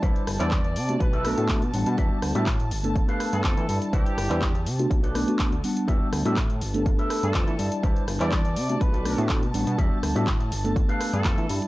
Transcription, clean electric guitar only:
X:1
M:4/4
L:1/16
Q:1/4=123
K:Em
V:1 name="Clean electric guitar"
[EBcd]2 z [EBcd] z4 z [FABe]3 z4 | [FGde]2 z [FGde] z4 z [GAB=f]3 z4 | [EBcd]2 z [EBcd] z4 z [FABd]3 z4 | [FGde]2 z [FGde] z4 z [GABe]3 z4 |
[EBcd]2 z [EBce] z4 z [FABd]3 z4 | [FGde]2 z [FGde] z4 z [GAB=f]3 z4 |]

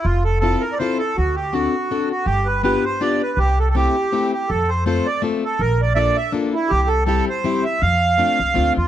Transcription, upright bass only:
X:1
M:3/4
L:1/8
Q:"Swing" 1/4=162
K:F
V:1 name="Upright bass" clef=bass
F,,,4 z2 | D,,4 z2 | G,,,4 z2 | C,,4 z2 |
F,,4 z2 | B,,,4 z2 | C,,4 z2 | F,,3 C,, D,, E,, |]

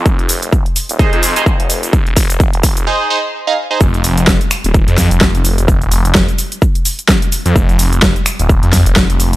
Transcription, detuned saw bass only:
X:1
M:4/4
L:1/16
Q:"Swing 16ths" 1/4=128
K:Fm
V:1 name="Detuned saw bass" clef=bass
F,,,2 F,,,3 z2 E,,,2 F,,2 F,,,2 F,,,3- | F,,, E,,, F,,,3 F,,,3 z8 | F,,,2 F,,,3 z2 E,,,2 F,,2 F,,,2 F,,,3- | F,,, E,,, F,,,3 z8 z2 F,, |
F,,,2 F,,,3 z2 E,,,2 F,,2 F,,,2 F,,,3 |]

